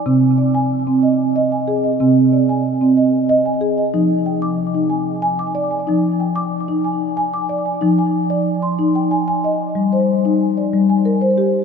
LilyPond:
<<
  \new Staff \with { instrumentName = "Marimba" } { \time 3/4 \key f \dorian \tempo 4 = 93 << { aes''16 r16 d''8. r16 ees''8. aes''8 ees''16~ | ees''8 d''8. r16 ees''8. aes''8 ees''16~ | ees''16 r16 g''8. r16 aes''8. d'''8 aes''16~ | aes''8 g''8. r16 aes''8. d'''8 aes''16~ |
aes''16 aes''8. r16 c'''8 g''16 aes''8 ees''8~ | ees''16 c''8. r16 d''8 aes''16 bes'8 g'8 | } \\ { c'8 r16 aes''8 c'8 r16 ees''8 aes'8 | c'8 r16 aes''8 c'8 r16 ees''8 aes'8 | ees'8 r16 d'''8 ees'8 r16 aes''8 d''8 | ees'8 r16 d'''8 ees'8 r16 aes''8 d''8 |
ees'8 r16 d''8 r16 ees'8 r16 aes''8 r16 | r8. ees'8 r16 g8 r16 c''8 r16 | } >> }
  \new Staff \with { instrumentName = "Marimba" } { \clef bass \time 3/4 \key f \dorian c2. | c2. | f2. | f2. |
f2. | g2. | }
>>